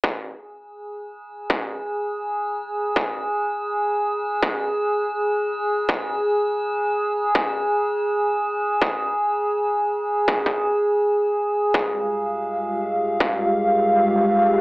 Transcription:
0.03 11.75 G#4 medium
0.03 kick loud
1.50 kick loud
2.96 kick loud
4.43 kick loud
5.89 kick loud
7.35 kick loud
8.82 kick loud
10.28 kick loud
10.46 kick medium
11.74 14.61 G#3 medium
11.74 14.61 G4 medium
11.74 14.61 F5 medium
11.74 kick loud
13.20 kick loud

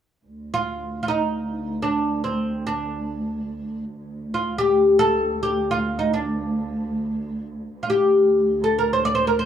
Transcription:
0.26 3.99 D2 medium
0.54 1.02 F4 medium
1.03 1.08 F4 medium
1.08 1.82 D#4 medium
1.82 2.24 D4 medium
2.24 2.66 C4 medium
2.67 3.84 D4 medium
4.00 7.73 D2 medium
4.34 4.58 F4 medium
4.58 4.99 G4 medium
4.99 5.42 A4 medium
5.43 5.71 G4 medium
5.71 6.00 F4 medium
5.99 6.13 D#4 medium
6.14 7.46 D4 medium
7.74 9.45 D2 medium
7.83 7.89 F4 medium
7.90 8.66 G4 medium
8.64 8.81 A4 medium
8.79 8.93 A#4 medium
8.93 9.05 C5 medium
9.05 9.14 D5 medium
9.15 9.27 C5 medium
9.27 9.39 A#4 medium
9.39 9.45 C5 medium

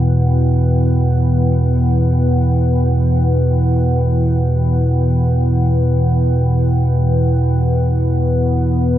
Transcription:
0.00 8.98 E2 medium
0.00 8.98 B2 medium
0.00 8.98 E4 medium
0.00 8.98 B4 medium
0.00 8.98 F#5 medium
0.00 7.79 G5 medium
7.81 8.98 E3 medium
8.01 8.98 B3 medium
8.87 8.98 F#4 medium

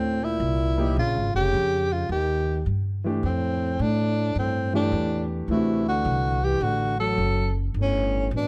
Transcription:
0.00 0.38 D2 medium
0.00 0.22 A2 medium
0.00 0.26 C4 medium
0.21 0.96 A#2 medium
0.21 0.98 E4 medium
0.40 0.95 C2 medium
0.78 0.95 F3 medium
0.78 0.95 A#3 medium
0.78 0.95 D#4 medium
0.78 0.95 G4 medium
0.96 1.15 A#1 medium
0.96 1.32 C#3 medium
0.96 1.33 F4 medium
1.15 1.34 G#1 medium
1.34 1.52 F1 medium
1.34 1.92 C#3 medium
1.34 1.94 G4 loud
1.53 2.08 F2 medium
1.92 2.09 C#3 medium
1.92 2.10 F4 medium
2.09 2.64 D#2 medium
2.09 2.62 D#3 medium
2.09 2.63 G4 medium
2.66 3.21 G2 medium
3.04 3.21 E3 medium
3.04 3.22 A3 medium
3.04 3.22 D4 medium
3.04 3.22 G4 medium
3.23 3.78 F2 medium
3.23 3.80 A2 medium
3.23 3.83 C4 medium
3.79 4.34 A2 medium
3.79 4.36 A2 medium
3.79 4.37 D4 loud
4.35 4.90 G2 medium
4.35 4.72 A2 medium
4.35 4.73 C4 medium
4.73 5.27 A2 medium
4.73 5.45 E3 medium
4.73 5.46 A3 medium
4.73 5.46 D4 medium
4.73 5.27 D4 medium
4.73 5.46 G4 medium
4.92 5.47 E2 medium
5.48 6.03 D2 medium
5.48 5.85 C3 medium
5.48 7.08 E3 medium
5.48 7.08 A3 medium
5.48 7.09 D4 medium
5.48 5.85 E4 medium
5.52 7.09 F#4 medium
5.87 6.44 D3 medium
5.87 6.46 F#4 medium
6.05 6.60 C2 medium
6.43 6.63 E3 medium
6.43 6.64 G4 medium
6.61 7.16 A1 medium
6.61 6.98 D3 medium
6.61 7.00 F#4 medium
6.99 7.52 F#3 medium
6.99 7.53 A4 medium
7.18 7.73 F#1 medium
7.74 8.30 G1 medium
7.74 8.29 A2 medium
7.81 8.31 C#4 medium
8.31 8.48 A1 medium
8.31 8.48 B2 medium
8.37 8.48 D4 medium

